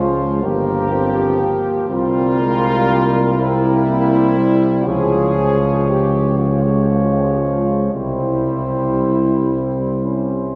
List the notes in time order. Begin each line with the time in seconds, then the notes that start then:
Already playing: C#2 F3 G#3 F4 C5
0.43 G1 F3 A#3 G4 A#4
0.92 C4
1.40 A#3
1.89 C2 G3 C4 F4 A#4
2.40 G#3
2.90 A#3
3.38 G3 C4 E4 A#4
3.87 A#3
4.12 C5
4.37 G3
4.86 C#2 F3 G#4 C#5
5.88 G4
6.38 F3 G#3 F4 C#5
6.48 G4
6.55 F4
6.63 G4
6.72 F4
6.81 G4
6.88 F4
6.97 G4
7.06 F4
7.14 G4
7.23 F4
7.31 G4
7.38 F4
7.93 C2 G3 C4 E4 C5
9.52 C4
10.05 C#4